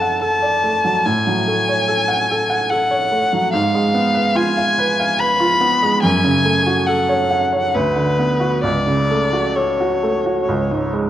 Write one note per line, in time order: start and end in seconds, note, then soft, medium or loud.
0.00 1.01 F#2 soft
0.00 0.84 F#3 soft
0.00 0.63 A3 soft
0.00 0.21 A4 soft
0.00 0.42 D5 soft
0.00 1.08 F#5 soft
0.00 0.21 A5 medium
0.21 0.55 A4 soft
0.21 1.08 A5 medium
0.42 0.76 D5 soft
0.63 0.97 A3 soft
0.84 1.06 F#3 soft
1.06 3.48 A2 medium
1.06 2.71 G#5 medium
1.27 1.60 F#3 soft
1.48 1.80 A3 soft
1.69 2.01 C#5 soft
1.88 2.21 A4 soft
2.08 2.41 F#5 medium
2.31 2.62 A4 medium
2.50 2.82 F#5 medium
2.70 3.04 A4 soft
2.70 3.52 F#5 medium
2.91 3.24 C#5 soft
3.12 3.45 A3 soft
3.33 3.53 F#3 soft
3.52 6.00 G#2 medium
3.52 4.38 F5 medium
3.74 4.07 G#3 soft
3.94 4.27 B3 soft
4.14 4.48 B4 soft
4.35 4.69 F4 medium
4.35 5.20 G#5 medium
4.57 4.91 F5 medium
4.78 5.12 B4 medium
4.99 5.32 F5 medium
5.19 5.53 B4 soft
5.19 6.02 B5 loud
5.40 5.74 F4 medium
5.61 5.94 B3 medium
5.82 6.03 G#3 soft
6.02 7.70 F#2 medium
6.02 6.88 G#5 loud
6.24 6.58 C#3 soft
6.45 6.79 A3 soft
6.66 7.01 F#4 soft
6.87 7.22 A4 medium
6.87 7.76 F#5 medium
7.09 7.44 C#5 medium
7.31 7.65 F#5 medium
7.53 7.74 C#5 soft
7.75 8.61 D2 medium
7.75 8.63 B4 medium
7.96 8.31 D3 soft
8.19 8.55 B3 soft
8.40 8.63 F#4 soft
8.63 10.43 C#2 medium
8.63 9.57 D5 medium
8.87 9.23 C#3 soft
9.11 9.47 A3 soft
9.33 9.70 F#4 soft
9.56 9.93 A4 soft
9.56 10.93 C#5 medium
9.80 10.16 F#4 soft
10.03 10.39 A3 soft
10.26 10.48 F#4 soft
10.49 11.10 C#2 medium
10.71 11.07 G#2 soft
10.93 11.10 G#3 soft